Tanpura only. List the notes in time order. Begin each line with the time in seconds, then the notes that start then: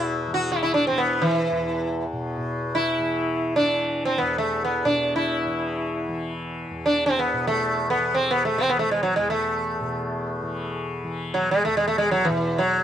Already playing: E2 B2 E3
0.28 E3
0.90 E3
1.51 E2
2.13 B2
2.37 B2
2.99 E3
3.61 E3
4.21 E2
4.84 B2
5.46 E3
6.09 E3
6.71 E2
7.33 B2
7.96 E3
8.58 E3
9.18 E2
9.81 B2
10.42 E3
11.04 E3
11.67 E2
12.29 B2